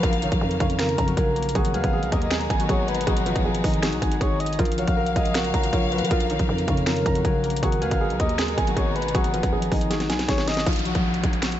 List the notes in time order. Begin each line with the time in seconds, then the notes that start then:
Already playing: C#3 F#3 G#3 A#3 D#4 G#4 A#4 C#5 F5 A#5
0.03 A#1 F3 F4 A#4, kick, closed hi-hat
0.13 closed hi-hat
0.22 D#3 D#4 C#5, closed hi-hat
0.32 A#1, kick, closed hi-hat
0.41 F2 A#4
0.51 closed hi-hat
0.60 F2 C#3 C#4 F5, kick, closed hi-hat
0.70 closed hi-hat
0.79 F3 F4 A#4, finger snap, snare, closed hi-hat
0.89 closed hi-hat
0.98 F2 A#5, kick, closed hi-hat
1.08 F#3 F#4, closed hi-hat
1.17 A#1 G#3 G#4 A#4, kick, closed hi-hat
1.36 A#3 A#4, closed hi-hat
1.43 closed hi-hat
1.49 closed hi-hat
1.55 G#1 B2 D#3 F#3 G#3 D#4 F#4 G#4, kick, closed hi-hat
1.65 closed hi-hat
1.74 D#2 G#3 G#4 B4 F5, closed hi-hat
1.84 G#1, kick, closed hi-hat
1.93 G#4
2.03 B1, closed hi-hat
2.12 D#2 A#3 A#4 D#5, kick, closed hi-hat
2.22 closed hi-hat
2.31 G#3 G#4, finger snap, snare, closed hi-hat
2.41 closed hi-hat
2.50 G#1 G#5, kick, closed hi-hat
2.60 F#3 F#4, closed hi-hat
2.69 G#1 F#3 F#4 G#4 C#5, kick, closed hi-hat
2.88 G#3 G#4 B4, closed hi-hat
2.94 closed hi-hat
3.01 closed hi-hat
3.07 G#1 F#3 F#4 G#4, kick, closed hi-hat
3.17 closed hi-hat
3.26 F3 F4 B4, closed hi-hat
3.36 G#1, kick, closed hi-hat
3.45 G#1 G#4
3.55 closed hi-hat
3.64 G#1 D#3 D#4 D#5, kick, open hi-hat
3.74 closed hi-hat
3.83 F#3 F#4 G#4, finger snap, snare, closed hi-hat
3.93 B1, closed hi-hat
4.02 G#1 G#5, kick, closed hi-hat
4.12 G#3 G#4, closed hi-hat
4.21 G#1 G#4 C#5, kick, closed hi-hat
4.40 D#5, closed hi-hat
4.46 closed hi-hat
4.53 closed hi-hat
4.59 A#1 C#3 F3 A#3 F4 A#4 F5, kick, closed hi-hat
4.65 closed hi-hat
4.72 closed hi-hat
4.78 F#3 F#4 C#5 F5, closed hi-hat
4.87 A#1, kick, closed hi-hat
4.97 A#4
5.06 closed hi-hat
5.16 A#1 G#3 G#4 D#5 F5, kick, closed hi-hat
5.25 closed hi-hat
5.34 F#3 F#4 A#4, finger snap, snare, closed hi-hat
5.45 closed hi-hat
5.54 A#1 A#5, kick, closed hi-hat
5.63 F3 F4, closed hi-hat
5.73 A#1 F3 F4 A#4 C#5, kick, closed hi-hat
5.92 F#3 F#4 B4, closed hi-hat
5.98 F3, closed hi-hat
6.05 closed hi-hat
6.11 A#1 F3 F4 A#4, kick, closed hi-hat
6.20 closed hi-hat
6.30 D#3 D#4 C#5, closed hi-hat
6.39 A#1, kick, closed hi-hat
6.49 F2 A#4
6.58 closed hi-hat
6.68 F2 C#3 C#4 F5, kick, closed hi-hat
6.77 closed hi-hat
6.86 F3 F4 A#4, finger snap, snare, closed hi-hat
6.96 closed hi-hat
7.06 F2 A#5, kick, closed hi-hat
7.15 F#3 F#4, closed hi-hat
7.24 A#1 G#3 G#4 A#4, kick, closed hi-hat
7.43 A#3 A#4, closed hi-hat
7.50 closed hi-hat
7.56 closed hi-hat
7.62 G#1 B2 D#3 F#3 G#3 D#4 F#4 G#4, kick, closed hi-hat
7.72 closed hi-hat
7.81 D#2 G#3 G#4 B4 F5, closed hi-hat
7.91 G#1, kick, closed hi-hat
8.01 G#4
8.10 B1, closed hi-hat
8.20 D#2 A#3 A#4 D#5, kick, closed hi-hat
8.29 closed hi-hat
8.38 G#3 G#4, finger snap, snare, closed hi-hat
8.48 closed hi-hat
8.58 G#1 G#5, kick, closed hi-hat
8.67 F#3 F#4, closed hi-hat
8.76 G#1 F#3 F#4 G#4 C#5, kick, closed hi-hat
8.96 G#3 G#4 B4, closed hi-hat
9.02 closed hi-hat
9.08 closed hi-hat
9.14 G#1 F#3 F#4 G#4, kick, closed hi-hat
9.24 closed hi-hat
9.33 F3 F4 B4, closed hi-hat
9.43 G#1, kick, closed hi-hat
9.53 G#1 G#4
9.62 closed hi-hat
9.71 G#1 D#3 D#4 D#5, kick, open hi-hat
9.81 closed hi-hat
9.90 F#3 F#4 G#4, snare, closed hi-hat
10.00 snare, closed hi-hat
10.09 B1 G#5, snare, closed hi-hat
10.19 G#3 G#4, snare, closed hi-hat
10.28 G#1 G#4 C#5, kick, snare, closed hi-hat
10.38 snare
10.48 D#5, snare, closed hi-hat
10.54 snare, closed hi-hat
10.60 closed hi-hat
10.66 A#1 F3 F4, kick, closed hi-hat, downlifter
10.73 closed hi-hat
10.76 closed hi-hat
10.79 closed hi-hat
10.85 F#3 F#4, closed hi-hat
10.95 A#1, kick, closed hi-hat
11.14 closed hi-hat
11.24 A#1 G#3 G#4, kick, closed hi-hat
11.33 closed hi-hat
11.42 F#3 F#4, finger snap, snare, closed hi-hat
11.52 closed hi-hat